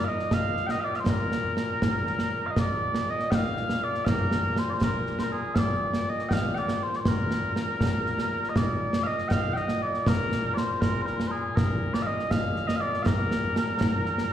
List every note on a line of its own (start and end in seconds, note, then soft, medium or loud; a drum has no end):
0.00 14.33 A#2 medium
0.04 0.33 D#5 medium
0.04 0.08 F5 medium
0.19 snare soft
0.31 0.67 F5 loud
0.31 concert bass drum medium
0.31 snare medium
0.57 snare soft
0.67 0.80 D#5 loud
0.67 0.70 G5 loud
0.67 snare medium
0.80 0.96 D5 medium
0.80 0.84 F5 medium
0.94 0.99 F5 medium
0.94 snare soft
0.99 1.09 C5 medium
1.06 2.46 A#4 medium
1.06 concert bass drum medium
1.06 snare loud
1.32 snare medium
1.57 snare medium
1.82 concert bass drum medium
1.82 snare medium
2.07 snare soft
2.19 snare medium
2.46 2.59 D#5 medium
2.46 2.50 F5 medium
2.56 3.10 D5 loud
2.56 concert bass drum medium
2.56 snare loud
2.94 snare medium
3.10 3.31 D#5 medium
3.19 snare soft
3.31 3.35 G5 loud
3.31 concert bass drum medium
3.31 snare loud
3.35 3.84 F5 loud
3.57 snare soft
3.69 snare medium
3.84 4.05 D5 medium
3.94 snare soft
4.05 4.59 A#4 loud
4.05 4.09 F5 loud
4.05 concert bass drum medium
4.05 snare loud
4.31 snare medium
4.56 4.70 C5 medium
4.56 snare medium
4.70 4.83 C5 medium
4.70 4.73 D5 medium
4.81 5.19 A#4 medium
4.81 concert bass drum medium
4.81 snare loud
5.07 snare soft
5.19 5.23 C5 medium
5.19 snare medium
5.23 5.32 A#4 medium
5.32 5.55 G#4 medium
5.55 6.09 D5 medium
5.55 5.58 F5 medium
5.55 concert bass drum medium
5.55 snare loud
5.93 snare medium
6.09 6.29 D#5 medium
6.19 snare soft
6.29 6.55 F5 medium
6.29 6.33 G5 medium
6.29 concert bass drum medium
6.29 snare medium
6.55 6.83 D5 medium
6.55 6.58 G5 medium
6.55 snare soft
6.68 snare medium
6.83 6.96 C5 medium
6.93 7.00 D5 medium
6.93 snare soft
7.00 7.08 C5 medium
7.05 8.49 A#4 medium
7.05 concert bass drum medium
7.05 snare medium
7.31 snare medium
7.56 snare medium
7.81 concert bass drum medium
7.81 snare medium
8.06 snare soft
8.19 snare medium
8.44 snare soft
8.49 8.56 D#5 medium
8.56 9.03 D5 loud
8.56 concert bass drum medium
8.56 snare loud
8.93 snare medium
9.03 9.28 D#5 loud
9.03 9.07 F5 loud
9.18 snare soft
9.28 9.53 F5 loud
9.28 9.32 G5 loud
9.28 concert bass drum medium
9.28 snare loud
9.53 9.82 D#5 medium
9.53 9.57 G5 medium
9.53 snare soft
9.68 snare medium
9.82 10.08 D5 loud
9.94 snare soft
10.06 10.54 A#4 loud
10.06 concert bass drum medium
10.06 snare loud
10.32 snare medium
10.54 10.81 C5 medium
10.54 10.57 D5 medium
10.54 snare medium
10.81 11.02 A#4 loud
10.81 concert bass drum medium
10.81 snare loud
11.02 11.06 C5 medium
11.06 11.27 A#4 medium
11.06 snare soft
11.20 snare medium
11.27 11.56 G#4 medium
11.27 11.31 C5 medium
11.56 11.94 A#4 medium
11.56 concert bass drum medium
11.56 snare loud
11.94 12.02 D5 loud
11.94 snare medium
12.02 12.06 F5 medium
12.06 12.31 D#5 medium
12.19 snare soft
12.31 12.67 F5 loud
12.31 concert bass drum medium
12.31 snare loud
12.56 snare soft
12.67 12.76 D#5 loud
12.67 snare medium
12.76 12.80 F5 loud
12.80 13.02 D5 loud
12.94 snare soft
13.02 14.33 A#4 medium
13.02 13.06 F5 medium
13.02 concert bass drum medium
13.02 snare loud
13.31 snare medium
13.56 snare medium
13.81 concert bass drum medium
13.81 snare loud
14.06 snare soft
14.18 snare medium